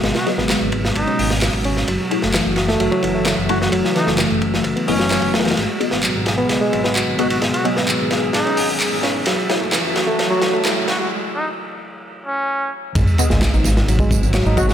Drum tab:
RD |x-x-x---x---x---x-x-----x---x---|x---x---x---x---x---x---x---x---|x---x---x---x---x-x-----x---xxxx|x---x---x---x---x---x---x---x-x-|
HH |--------------------o-----------|--------------------------------|--------------------o-----------|--------------------------------|
TB |--------------------------------|--------------------------------|--------------------------------|--------------------------------|
CP |--------x---------------x-------|--------x---------------x-------|--------x---------------x-------|--------x---------------x-------|
SD |o-o-o-o-o-----o-------o-o-----o-|------o-o---o-o---------o-----o-|--o-o-o-o-----o-------o-o---oooo|o-----o-----o---o-----o---------|
BD |------------o---o---------o-----|o-----------------o-o-------o---|o-----------o---o---------o-----|--------------------------------|

RD |x-x-x---x---x---x-x-----x---x---|x---x---x---x---x---x---x---x---|--------------------------------|x---x---x---x---x---x---x---x---|
HH |--------------------o-----------|--------------------------------|--------------------------------|--------------------------------|
TB |--------------------------------|--------------------------------|--------------------------------|x-x-x-x-x-x-x-x-x-x-x-x-x-x-x-x-|
CP |--------x---------------x-------|--------x---------------x-------|--------------------------------|--------x---------------x-------|
SD |o-----o-----o---o-----------o---|o---o---o---o---o---o---o---o---|--------------------------------|------o-o---o-o---------o-----o-|
BD |--------------------------------|--------------------------------|--------------------------------|o-----------------o-o-------o---|